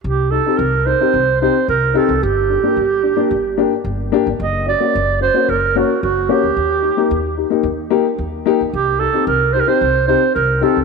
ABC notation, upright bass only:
X:1
M:4/4
L:1/16
Q:1/4=111
K:none
V:1 name="Upright bass" clef=bass
C,,4 C,,4 C,,4 C,,3 C,, | G,,,4 G,,,4 G,,,4 G,,,3 G,,, | ^F,,,4 F,,,4 F,,,4 F,,,3 D,, | _E,,4 E,,4 E,,4 E,,3 E,, |
C,,4 C,,4 C,,4 C,,3 C,, |]